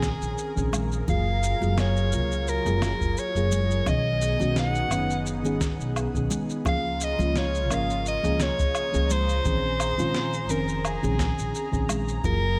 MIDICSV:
0, 0, Header, 1, 6, 480
1, 0, Start_track
1, 0, Tempo, 697674
1, 742, Time_signature, 4, 2, 24, 8
1, 8665, End_track
2, 0, Start_track
2, 0, Title_t, "Soprano saxophone"
2, 0, Program_c, 0, 64
2, 0, Note_on_c, 0, 68, 81
2, 508, Note_off_c, 0, 68, 0
2, 755, Note_on_c, 0, 77, 101
2, 1238, Note_on_c, 0, 73, 94
2, 1248, Note_off_c, 0, 77, 0
2, 1714, Note_on_c, 0, 70, 86
2, 1724, Note_off_c, 0, 73, 0
2, 2197, Note_on_c, 0, 73, 94
2, 2207, Note_off_c, 0, 70, 0
2, 2673, Note_on_c, 0, 75, 99
2, 2683, Note_off_c, 0, 73, 0
2, 3148, Note_off_c, 0, 75, 0
2, 3159, Note_on_c, 0, 78, 105
2, 3603, Note_off_c, 0, 78, 0
2, 4598, Note_on_c, 0, 77, 108
2, 4842, Note_on_c, 0, 75, 104
2, 4852, Note_off_c, 0, 77, 0
2, 5076, Note_on_c, 0, 73, 100
2, 5087, Note_off_c, 0, 75, 0
2, 5324, Note_on_c, 0, 77, 97
2, 5334, Note_off_c, 0, 73, 0
2, 5553, Note_off_c, 0, 77, 0
2, 5561, Note_on_c, 0, 75, 93
2, 5795, Note_on_c, 0, 73, 102
2, 5806, Note_off_c, 0, 75, 0
2, 6272, Note_on_c, 0, 72, 104
2, 6282, Note_off_c, 0, 73, 0
2, 7228, Note_on_c, 0, 70, 81
2, 7238, Note_off_c, 0, 72, 0
2, 7465, Note_off_c, 0, 70, 0
2, 7478, Note_on_c, 0, 68, 81
2, 8163, Note_off_c, 0, 68, 0
2, 8432, Note_on_c, 0, 70, 103
2, 8665, Note_off_c, 0, 70, 0
2, 8665, End_track
3, 0, Start_track
3, 0, Title_t, "Analog synth pad"
3, 0, Program_c, 1, 89
3, 0, Note_on_c, 1, 68, 73
3, 0, Note_on_c, 1, 70, 85
3, 739, Note_on_c, 1, 65, 75
3, 740, Note_on_c, 1, 54, 79
3, 2635, Note_off_c, 1, 70, 0
3, 2641, Note_off_c, 1, 65, 0
3, 2642, Note_off_c, 1, 54, 0
3, 2655, Note_on_c, 1, 63, 72
3, 2657, Note_on_c, 1, 59, 77
3, 4555, Note_off_c, 1, 68, 0
3, 4560, Note_off_c, 1, 59, 0
3, 4560, Note_off_c, 1, 63, 0
3, 4580, Note_on_c, 1, 82, 87
3, 4583, Note_on_c, 1, 49, 82
3, 4583, Note_on_c, 1, 65, 77
3, 6484, Note_off_c, 1, 49, 0
3, 6484, Note_off_c, 1, 65, 0
3, 6503, Note_on_c, 1, 68, 78
3, 8420, Note_on_c, 1, 54, 80
3, 8422, Note_on_c, 1, 65, 73
3, 8665, Note_off_c, 1, 54, 0
3, 8665, Note_off_c, 1, 65, 0
3, 8665, Note_off_c, 1, 68, 0
3, 8665, Note_off_c, 1, 82, 0
3, 8665, End_track
4, 0, Start_track
4, 0, Title_t, "FM electric piano"
4, 0, Program_c, 2, 5
4, 0, Note_on_c, 2, 51, 82
4, 0, Note_on_c, 2, 60, 77
4, 0, Note_on_c, 2, 61, 75
4, 0, Note_on_c, 2, 68, 91
4, 358, Note_off_c, 2, 51, 0
4, 359, Note_off_c, 2, 60, 0
4, 362, Note_off_c, 2, 61, 0
4, 365, Note_off_c, 2, 68, 0
4, 384, Note_on_c, 2, 51, 67
4, 390, Note_on_c, 2, 60, 65
4, 395, Note_on_c, 2, 61, 64
4, 400, Note_on_c, 2, 68, 76
4, 712, Note_off_c, 2, 51, 0
4, 715, Note_off_c, 2, 60, 0
4, 718, Note_off_c, 2, 61, 0
4, 720, Note_off_c, 2, 68, 0
4, 743, Note_on_c, 2, 54, 86
4, 744, Note_on_c, 2, 58, 73
4, 750, Note_on_c, 2, 65, 76
4, 753, Note_on_c, 2, 68, 87
4, 1081, Note_off_c, 2, 54, 0
4, 1081, Note_off_c, 2, 58, 0
4, 1084, Note_off_c, 2, 65, 0
4, 1086, Note_off_c, 2, 68, 0
4, 1105, Note_on_c, 2, 54, 85
4, 1112, Note_on_c, 2, 58, 76
4, 1114, Note_on_c, 2, 65, 80
4, 1122, Note_on_c, 2, 68, 91
4, 1433, Note_off_c, 2, 54, 0
4, 1436, Note_off_c, 2, 58, 0
4, 1437, Note_off_c, 2, 65, 0
4, 1441, Note_off_c, 2, 68, 0
4, 1459, Note_on_c, 2, 54, 78
4, 1463, Note_on_c, 2, 58, 69
4, 1468, Note_on_c, 2, 65, 67
4, 1471, Note_on_c, 2, 70, 85
4, 1799, Note_off_c, 2, 54, 0
4, 1801, Note_off_c, 2, 58, 0
4, 1803, Note_off_c, 2, 65, 0
4, 1805, Note_off_c, 2, 70, 0
4, 1824, Note_on_c, 2, 54, 82
4, 1831, Note_on_c, 2, 58, 72
4, 1834, Note_on_c, 2, 65, 76
4, 1838, Note_on_c, 2, 68, 97
4, 2277, Note_off_c, 2, 54, 0
4, 2280, Note_off_c, 2, 58, 0
4, 2282, Note_off_c, 2, 65, 0
4, 2284, Note_off_c, 2, 68, 0
4, 2307, Note_on_c, 2, 54, 73
4, 2313, Note_on_c, 2, 58, 63
4, 2316, Note_on_c, 2, 65, 69
4, 2321, Note_on_c, 2, 68, 81
4, 2634, Note_off_c, 2, 54, 0
4, 2636, Note_off_c, 2, 58, 0
4, 2638, Note_off_c, 2, 65, 0
4, 2641, Note_off_c, 2, 68, 0
4, 2656, Note_on_c, 2, 51, 86
4, 2657, Note_on_c, 2, 59, 78
4, 2663, Note_on_c, 2, 61, 73
4, 2667, Note_on_c, 2, 68, 88
4, 2997, Note_off_c, 2, 51, 0
4, 2998, Note_off_c, 2, 59, 0
4, 3001, Note_off_c, 2, 61, 0
4, 3003, Note_off_c, 2, 68, 0
4, 3022, Note_on_c, 2, 51, 82
4, 3025, Note_on_c, 2, 59, 73
4, 3030, Note_on_c, 2, 61, 78
4, 3033, Note_on_c, 2, 66, 91
4, 3351, Note_off_c, 2, 51, 0
4, 3353, Note_off_c, 2, 59, 0
4, 3355, Note_off_c, 2, 61, 0
4, 3357, Note_off_c, 2, 66, 0
4, 3376, Note_on_c, 2, 51, 78
4, 3380, Note_on_c, 2, 59, 69
4, 3383, Note_on_c, 2, 61, 76
4, 3387, Note_on_c, 2, 71, 85
4, 3717, Note_off_c, 2, 51, 0
4, 3719, Note_off_c, 2, 59, 0
4, 3721, Note_off_c, 2, 61, 0
4, 3723, Note_off_c, 2, 71, 0
4, 3738, Note_on_c, 2, 51, 84
4, 3745, Note_on_c, 2, 59, 70
4, 3749, Note_on_c, 2, 61, 77
4, 3752, Note_on_c, 2, 68, 94
4, 4194, Note_off_c, 2, 51, 0
4, 4197, Note_off_c, 2, 59, 0
4, 4199, Note_off_c, 2, 61, 0
4, 4201, Note_off_c, 2, 68, 0
4, 4231, Note_on_c, 2, 51, 72
4, 4234, Note_on_c, 2, 59, 63
4, 4238, Note_on_c, 2, 61, 68
4, 4242, Note_on_c, 2, 68, 75
4, 4556, Note_off_c, 2, 51, 0
4, 4557, Note_off_c, 2, 59, 0
4, 4559, Note_off_c, 2, 61, 0
4, 4561, Note_off_c, 2, 68, 0
4, 4573, Note_on_c, 2, 53, 84
4, 4579, Note_on_c, 2, 58, 81
4, 4583, Note_on_c, 2, 61, 76
4, 4586, Note_on_c, 2, 68, 96
4, 4916, Note_off_c, 2, 53, 0
4, 4919, Note_off_c, 2, 58, 0
4, 4921, Note_off_c, 2, 61, 0
4, 4922, Note_off_c, 2, 68, 0
4, 4943, Note_on_c, 2, 53, 89
4, 4948, Note_on_c, 2, 58, 76
4, 4952, Note_on_c, 2, 61, 79
4, 4957, Note_on_c, 2, 65, 92
4, 5272, Note_off_c, 2, 53, 0
4, 5274, Note_off_c, 2, 58, 0
4, 5276, Note_off_c, 2, 61, 0
4, 5279, Note_off_c, 2, 65, 0
4, 5296, Note_on_c, 2, 53, 76
4, 5298, Note_on_c, 2, 58, 69
4, 5304, Note_on_c, 2, 61, 76
4, 5309, Note_on_c, 2, 70, 85
4, 5637, Note_off_c, 2, 53, 0
4, 5638, Note_off_c, 2, 58, 0
4, 5641, Note_off_c, 2, 61, 0
4, 5644, Note_off_c, 2, 70, 0
4, 5662, Note_on_c, 2, 53, 84
4, 5667, Note_on_c, 2, 58, 75
4, 5673, Note_on_c, 2, 61, 80
4, 5675, Note_on_c, 2, 68, 91
4, 6116, Note_off_c, 2, 53, 0
4, 6118, Note_off_c, 2, 58, 0
4, 6121, Note_off_c, 2, 61, 0
4, 6122, Note_off_c, 2, 68, 0
4, 6139, Note_on_c, 2, 53, 66
4, 6145, Note_on_c, 2, 58, 67
4, 6147, Note_on_c, 2, 61, 61
4, 6152, Note_on_c, 2, 68, 80
4, 6470, Note_off_c, 2, 53, 0
4, 6473, Note_off_c, 2, 58, 0
4, 6474, Note_off_c, 2, 61, 0
4, 6476, Note_off_c, 2, 68, 0
4, 6497, Note_on_c, 2, 51, 80
4, 6501, Note_on_c, 2, 60, 77
4, 6506, Note_on_c, 2, 61, 76
4, 6511, Note_on_c, 2, 68, 93
4, 6838, Note_off_c, 2, 51, 0
4, 6840, Note_off_c, 2, 60, 0
4, 6842, Note_off_c, 2, 61, 0
4, 6845, Note_off_c, 2, 68, 0
4, 6863, Note_on_c, 2, 51, 87
4, 6866, Note_on_c, 2, 60, 75
4, 6872, Note_on_c, 2, 61, 72
4, 6877, Note_on_c, 2, 65, 91
4, 7192, Note_off_c, 2, 51, 0
4, 7193, Note_off_c, 2, 60, 0
4, 7196, Note_off_c, 2, 61, 0
4, 7199, Note_off_c, 2, 65, 0
4, 7220, Note_on_c, 2, 51, 80
4, 7223, Note_on_c, 2, 60, 72
4, 7225, Note_on_c, 2, 61, 68
4, 7233, Note_on_c, 2, 70, 90
4, 7559, Note_off_c, 2, 51, 0
4, 7561, Note_off_c, 2, 60, 0
4, 7561, Note_off_c, 2, 61, 0
4, 7566, Note_off_c, 2, 70, 0
4, 7585, Note_on_c, 2, 51, 84
4, 7589, Note_on_c, 2, 60, 75
4, 7594, Note_on_c, 2, 61, 78
4, 7596, Note_on_c, 2, 68, 97
4, 8037, Note_off_c, 2, 51, 0
4, 8039, Note_off_c, 2, 60, 0
4, 8042, Note_off_c, 2, 61, 0
4, 8043, Note_off_c, 2, 68, 0
4, 8061, Note_on_c, 2, 51, 71
4, 8066, Note_on_c, 2, 60, 65
4, 8069, Note_on_c, 2, 61, 67
4, 8074, Note_on_c, 2, 68, 81
4, 8391, Note_off_c, 2, 51, 0
4, 8393, Note_off_c, 2, 60, 0
4, 8395, Note_off_c, 2, 61, 0
4, 8397, Note_off_c, 2, 68, 0
4, 8418, Note_on_c, 2, 54, 88
4, 8422, Note_on_c, 2, 58, 83
4, 8424, Note_on_c, 2, 65, 82
4, 8429, Note_on_c, 2, 68, 92
4, 8665, Note_off_c, 2, 54, 0
4, 8665, Note_off_c, 2, 58, 0
4, 8665, Note_off_c, 2, 65, 0
4, 8665, Note_off_c, 2, 68, 0
4, 8665, End_track
5, 0, Start_track
5, 0, Title_t, "Upright bass"
5, 0, Program_c, 3, 32
5, 0, Note_on_c, 3, 34, 90
5, 83, Note_off_c, 3, 34, 0
5, 149, Note_on_c, 3, 34, 74
5, 232, Note_off_c, 3, 34, 0
5, 393, Note_on_c, 3, 34, 86
5, 697, Note_off_c, 3, 34, 0
5, 747, Note_on_c, 3, 30, 87
5, 1059, Note_off_c, 3, 30, 0
5, 1111, Note_on_c, 3, 30, 96
5, 1460, Note_on_c, 3, 37, 79
5, 1470, Note_off_c, 3, 30, 0
5, 1776, Note_off_c, 3, 37, 0
5, 1829, Note_on_c, 3, 30, 98
5, 2003, Note_off_c, 3, 30, 0
5, 2072, Note_on_c, 3, 30, 75
5, 2154, Note_off_c, 3, 30, 0
5, 2306, Note_on_c, 3, 30, 87
5, 2613, Note_off_c, 3, 30, 0
5, 2661, Note_on_c, 3, 35, 86
5, 2976, Note_off_c, 3, 35, 0
5, 3025, Note_on_c, 3, 35, 93
5, 3377, Note_off_c, 3, 35, 0
5, 3377, Note_on_c, 3, 30, 81
5, 3747, Note_off_c, 3, 30, 0
5, 3747, Note_on_c, 3, 32, 77
5, 3922, Note_off_c, 3, 32, 0
5, 3986, Note_on_c, 3, 35, 74
5, 4161, Note_off_c, 3, 35, 0
5, 4229, Note_on_c, 3, 35, 77
5, 4312, Note_off_c, 3, 35, 0
5, 4582, Note_on_c, 3, 37, 85
5, 4897, Note_off_c, 3, 37, 0
5, 4948, Note_on_c, 3, 37, 90
5, 5299, Note_off_c, 3, 37, 0
5, 5299, Note_on_c, 3, 32, 82
5, 5616, Note_off_c, 3, 32, 0
5, 5669, Note_on_c, 3, 37, 94
5, 5842, Note_off_c, 3, 37, 0
5, 5914, Note_on_c, 3, 37, 78
5, 5995, Note_off_c, 3, 37, 0
5, 6152, Note_on_c, 3, 37, 88
5, 6456, Note_off_c, 3, 37, 0
5, 6504, Note_on_c, 3, 34, 88
5, 6818, Note_off_c, 3, 34, 0
5, 6876, Note_on_c, 3, 34, 86
5, 7226, Note_off_c, 3, 34, 0
5, 7226, Note_on_c, 3, 29, 82
5, 7539, Note_off_c, 3, 29, 0
5, 7597, Note_on_c, 3, 34, 91
5, 7766, Note_off_c, 3, 34, 0
5, 7836, Note_on_c, 3, 34, 77
5, 7916, Note_off_c, 3, 34, 0
5, 8072, Note_on_c, 3, 34, 81
5, 8376, Note_off_c, 3, 34, 0
5, 8422, Note_on_c, 3, 30, 96
5, 8665, Note_off_c, 3, 30, 0
5, 8665, End_track
6, 0, Start_track
6, 0, Title_t, "Drums"
6, 17, Note_on_c, 9, 38, 76
6, 20, Note_on_c, 9, 82, 72
6, 23, Note_on_c, 9, 36, 94
6, 86, Note_off_c, 9, 38, 0
6, 88, Note_off_c, 9, 82, 0
6, 92, Note_off_c, 9, 36, 0
6, 151, Note_on_c, 9, 82, 34
6, 219, Note_off_c, 9, 82, 0
6, 261, Note_on_c, 9, 82, 44
6, 330, Note_off_c, 9, 82, 0
6, 393, Note_on_c, 9, 36, 54
6, 394, Note_on_c, 9, 82, 31
6, 462, Note_off_c, 9, 36, 0
6, 463, Note_off_c, 9, 82, 0
6, 502, Note_on_c, 9, 63, 92
6, 503, Note_on_c, 9, 77, 76
6, 505, Note_on_c, 9, 82, 75
6, 571, Note_off_c, 9, 63, 0
6, 571, Note_off_c, 9, 77, 0
6, 574, Note_off_c, 9, 82, 0
6, 633, Note_on_c, 9, 82, 32
6, 702, Note_off_c, 9, 82, 0
6, 743, Note_on_c, 9, 64, 91
6, 744, Note_on_c, 9, 82, 42
6, 745, Note_on_c, 9, 36, 107
6, 812, Note_off_c, 9, 64, 0
6, 813, Note_off_c, 9, 82, 0
6, 814, Note_off_c, 9, 36, 0
6, 985, Note_on_c, 9, 82, 76
6, 1054, Note_off_c, 9, 82, 0
6, 1113, Note_on_c, 9, 63, 83
6, 1116, Note_on_c, 9, 82, 30
6, 1182, Note_off_c, 9, 63, 0
6, 1185, Note_off_c, 9, 82, 0
6, 1223, Note_on_c, 9, 38, 76
6, 1223, Note_on_c, 9, 77, 71
6, 1225, Note_on_c, 9, 82, 43
6, 1291, Note_off_c, 9, 38, 0
6, 1291, Note_off_c, 9, 77, 0
6, 1294, Note_off_c, 9, 82, 0
6, 1352, Note_on_c, 9, 82, 29
6, 1421, Note_off_c, 9, 82, 0
6, 1461, Note_on_c, 9, 82, 77
6, 1530, Note_off_c, 9, 82, 0
6, 1594, Note_on_c, 9, 82, 31
6, 1662, Note_off_c, 9, 82, 0
6, 1703, Note_on_c, 9, 82, 46
6, 1771, Note_off_c, 9, 82, 0
6, 1832, Note_on_c, 9, 82, 31
6, 1834, Note_on_c, 9, 63, 67
6, 1901, Note_off_c, 9, 82, 0
6, 1903, Note_off_c, 9, 63, 0
6, 1940, Note_on_c, 9, 38, 74
6, 1940, Note_on_c, 9, 77, 67
6, 1943, Note_on_c, 9, 82, 73
6, 2009, Note_off_c, 9, 38, 0
6, 2009, Note_off_c, 9, 77, 0
6, 2011, Note_off_c, 9, 82, 0
6, 2073, Note_on_c, 9, 36, 97
6, 2074, Note_on_c, 9, 82, 34
6, 2141, Note_off_c, 9, 36, 0
6, 2143, Note_off_c, 9, 82, 0
6, 2182, Note_on_c, 9, 82, 46
6, 2251, Note_off_c, 9, 82, 0
6, 2312, Note_on_c, 9, 82, 30
6, 2381, Note_off_c, 9, 82, 0
6, 2419, Note_on_c, 9, 82, 81
6, 2424, Note_on_c, 9, 63, 87
6, 2488, Note_off_c, 9, 82, 0
6, 2493, Note_off_c, 9, 63, 0
6, 2550, Note_on_c, 9, 82, 34
6, 2619, Note_off_c, 9, 82, 0
6, 2659, Note_on_c, 9, 77, 67
6, 2660, Note_on_c, 9, 64, 77
6, 2661, Note_on_c, 9, 82, 43
6, 2662, Note_on_c, 9, 36, 119
6, 2727, Note_off_c, 9, 77, 0
6, 2729, Note_off_c, 9, 64, 0
6, 2730, Note_off_c, 9, 82, 0
6, 2731, Note_off_c, 9, 36, 0
6, 2901, Note_on_c, 9, 82, 71
6, 2969, Note_off_c, 9, 82, 0
6, 3024, Note_on_c, 9, 63, 77
6, 3033, Note_on_c, 9, 82, 29
6, 3093, Note_off_c, 9, 63, 0
6, 3101, Note_off_c, 9, 82, 0
6, 3139, Note_on_c, 9, 38, 70
6, 3142, Note_on_c, 9, 82, 42
6, 3208, Note_off_c, 9, 38, 0
6, 3210, Note_off_c, 9, 82, 0
6, 3269, Note_on_c, 9, 82, 30
6, 3338, Note_off_c, 9, 82, 0
6, 3378, Note_on_c, 9, 77, 65
6, 3380, Note_on_c, 9, 82, 75
6, 3447, Note_off_c, 9, 77, 0
6, 3449, Note_off_c, 9, 82, 0
6, 3511, Note_on_c, 9, 82, 31
6, 3580, Note_off_c, 9, 82, 0
6, 3620, Note_on_c, 9, 82, 43
6, 3689, Note_off_c, 9, 82, 0
6, 3748, Note_on_c, 9, 63, 54
6, 3750, Note_on_c, 9, 82, 31
6, 3817, Note_off_c, 9, 63, 0
6, 3819, Note_off_c, 9, 82, 0
6, 3859, Note_on_c, 9, 38, 69
6, 3861, Note_on_c, 9, 36, 100
6, 3862, Note_on_c, 9, 82, 70
6, 3928, Note_off_c, 9, 38, 0
6, 3930, Note_off_c, 9, 36, 0
6, 3931, Note_off_c, 9, 82, 0
6, 3993, Note_on_c, 9, 82, 33
6, 4062, Note_off_c, 9, 82, 0
6, 4102, Note_on_c, 9, 77, 72
6, 4105, Note_on_c, 9, 82, 44
6, 4171, Note_off_c, 9, 77, 0
6, 4174, Note_off_c, 9, 82, 0
6, 4230, Note_on_c, 9, 36, 58
6, 4234, Note_on_c, 9, 82, 29
6, 4299, Note_off_c, 9, 36, 0
6, 4303, Note_off_c, 9, 82, 0
6, 4338, Note_on_c, 9, 63, 93
6, 4340, Note_on_c, 9, 82, 77
6, 4406, Note_off_c, 9, 63, 0
6, 4409, Note_off_c, 9, 82, 0
6, 4471, Note_on_c, 9, 82, 32
6, 4539, Note_off_c, 9, 82, 0
6, 4576, Note_on_c, 9, 64, 76
6, 4580, Note_on_c, 9, 77, 72
6, 4582, Note_on_c, 9, 36, 116
6, 4582, Note_on_c, 9, 82, 44
6, 4645, Note_off_c, 9, 64, 0
6, 4649, Note_off_c, 9, 77, 0
6, 4650, Note_off_c, 9, 36, 0
6, 4651, Note_off_c, 9, 82, 0
6, 4821, Note_on_c, 9, 82, 75
6, 4889, Note_off_c, 9, 82, 0
6, 4946, Note_on_c, 9, 63, 79
6, 4953, Note_on_c, 9, 82, 28
6, 5015, Note_off_c, 9, 63, 0
6, 5022, Note_off_c, 9, 82, 0
6, 5061, Note_on_c, 9, 38, 72
6, 5064, Note_on_c, 9, 82, 43
6, 5130, Note_off_c, 9, 38, 0
6, 5132, Note_off_c, 9, 82, 0
6, 5193, Note_on_c, 9, 82, 27
6, 5262, Note_off_c, 9, 82, 0
6, 5301, Note_on_c, 9, 77, 71
6, 5304, Note_on_c, 9, 82, 71
6, 5370, Note_off_c, 9, 77, 0
6, 5373, Note_off_c, 9, 82, 0
6, 5435, Note_on_c, 9, 82, 28
6, 5504, Note_off_c, 9, 82, 0
6, 5545, Note_on_c, 9, 82, 39
6, 5614, Note_off_c, 9, 82, 0
6, 5672, Note_on_c, 9, 82, 27
6, 5677, Note_on_c, 9, 63, 59
6, 5740, Note_off_c, 9, 82, 0
6, 5746, Note_off_c, 9, 63, 0
6, 5778, Note_on_c, 9, 38, 67
6, 5780, Note_on_c, 9, 82, 72
6, 5846, Note_off_c, 9, 38, 0
6, 5849, Note_off_c, 9, 82, 0
6, 5911, Note_on_c, 9, 82, 32
6, 5913, Note_on_c, 9, 36, 97
6, 5980, Note_off_c, 9, 82, 0
6, 5981, Note_off_c, 9, 36, 0
6, 6018, Note_on_c, 9, 77, 74
6, 6020, Note_on_c, 9, 82, 43
6, 6087, Note_off_c, 9, 77, 0
6, 6089, Note_off_c, 9, 82, 0
6, 6150, Note_on_c, 9, 82, 30
6, 6219, Note_off_c, 9, 82, 0
6, 6261, Note_on_c, 9, 82, 70
6, 6265, Note_on_c, 9, 63, 89
6, 6330, Note_off_c, 9, 82, 0
6, 6334, Note_off_c, 9, 63, 0
6, 6392, Note_on_c, 9, 82, 32
6, 6461, Note_off_c, 9, 82, 0
6, 6502, Note_on_c, 9, 82, 42
6, 6504, Note_on_c, 9, 36, 100
6, 6507, Note_on_c, 9, 64, 84
6, 6571, Note_off_c, 9, 82, 0
6, 6573, Note_off_c, 9, 36, 0
6, 6576, Note_off_c, 9, 64, 0
6, 6741, Note_on_c, 9, 77, 71
6, 6744, Note_on_c, 9, 82, 75
6, 6810, Note_off_c, 9, 77, 0
6, 6813, Note_off_c, 9, 82, 0
6, 6871, Note_on_c, 9, 82, 28
6, 6873, Note_on_c, 9, 63, 73
6, 6940, Note_off_c, 9, 82, 0
6, 6942, Note_off_c, 9, 63, 0
6, 6980, Note_on_c, 9, 38, 71
6, 6982, Note_on_c, 9, 82, 39
6, 7049, Note_off_c, 9, 38, 0
6, 7051, Note_off_c, 9, 82, 0
6, 7109, Note_on_c, 9, 82, 29
6, 7178, Note_off_c, 9, 82, 0
6, 7220, Note_on_c, 9, 82, 68
6, 7289, Note_off_c, 9, 82, 0
6, 7352, Note_on_c, 9, 82, 29
6, 7421, Note_off_c, 9, 82, 0
6, 7462, Note_on_c, 9, 77, 78
6, 7465, Note_on_c, 9, 82, 41
6, 7531, Note_off_c, 9, 77, 0
6, 7534, Note_off_c, 9, 82, 0
6, 7594, Note_on_c, 9, 82, 29
6, 7596, Note_on_c, 9, 63, 59
6, 7663, Note_off_c, 9, 82, 0
6, 7665, Note_off_c, 9, 63, 0
6, 7701, Note_on_c, 9, 38, 71
6, 7703, Note_on_c, 9, 82, 65
6, 7704, Note_on_c, 9, 36, 92
6, 7770, Note_off_c, 9, 38, 0
6, 7772, Note_off_c, 9, 82, 0
6, 7773, Note_off_c, 9, 36, 0
6, 7832, Note_on_c, 9, 82, 32
6, 7901, Note_off_c, 9, 82, 0
6, 7946, Note_on_c, 9, 82, 41
6, 8015, Note_off_c, 9, 82, 0
6, 8072, Note_on_c, 9, 36, 55
6, 8073, Note_on_c, 9, 82, 28
6, 8140, Note_off_c, 9, 36, 0
6, 8142, Note_off_c, 9, 82, 0
6, 8181, Note_on_c, 9, 77, 78
6, 8184, Note_on_c, 9, 82, 74
6, 8186, Note_on_c, 9, 63, 78
6, 8250, Note_off_c, 9, 77, 0
6, 8253, Note_off_c, 9, 82, 0
6, 8255, Note_off_c, 9, 63, 0
6, 8313, Note_on_c, 9, 82, 29
6, 8381, Note_off_c, 9, 82, 0
6, 8423, Note_on_c, 9, 36, 106
6, 8423, Note_on_c, 9, 64, 82
6, 8423, Note_on_c, 9, 82, 43
6, 8492, Note_off_c, 9, 36, 0
6, 8492, Note_off_c, 9, 64, 0
6, 8492, Note_off_c, 9, 82, 0
6, 8665, End_track
0, 0, End_of_file